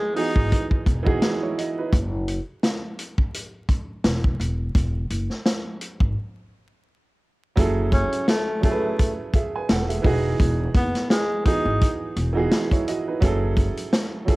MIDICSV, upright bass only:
0, 0, Header, 1, 2, 480
1, 0, Start_track
1, 0, Tempo, 705882
1, 1310, Time_signature, 4, 2, 24, 8
1, 9765, End_track
2, 0, Start_track
2, 0, Title_t, "Upright bass"
2, 0, Program_c, 0, 32
2, 243, Note_on_c, 0, 32, 90
2, 330, Note_off_c, 0, 32, 0
2, 588, Note_on_c, 0, 28, 94
2, 785, Note_off_c, 0, 28, 0
2, 1310, Note_on_c, 0, 30, 111
2, 1616, Note_off_c, 0, 30, 0
2, 2750, Note_on_c, 0, 28, 92
2, 2946, Note_off_c, 0, 28, 0
2, 2990, Note_on_c, 0, 28, 95
2, 3186, Note_off_c, 0, 28, 0
2, 3230, Note_on_c, 0, 28, 111
2, 3427, Note_off_c, 0, 28, 0
2, 3471, Note_on_c, 0, 30, 91
2, 3580, Note_off_c, 0, 30, 0
2, 4083, Note_on_c, 0, 32, 95
2, 4171, Note_off_c, 0, 32, 0
2, 5150, Note_on_c, 0, 30, 111
2, 5456, Note_off_c, 0, 30, 0
2, 6591, Note_on_c, 0, 28, 91
2, 6787, Note_off_c, 0, 28, 0
2, 6830, Note_on_c, 0, 28, 98
2, 7027, Note_off_c, 0, 28, 0
2, 7070, Note_on_c, 0, 28, 108
2, 7267, Note_off_c, 0, 28, 0
2, 7308, Note_on_c, 0, 30, 89
2, 7418, Note_off_c, 0, 30, 0
2, 7924, Note_on_c, 0, 32, 95
2, 8011, Note_off_c, 0, 32, 0
2, 8271, Note_on_c, 0, 28, 97
2, 8467, Note_off_c, 0, 28, 0
2, 8990, Note_on_c, 0, 30, 114
2, 9296, Note_off_c, 0, 30, 0
2, 9765, End_track
0, 0, End_of_file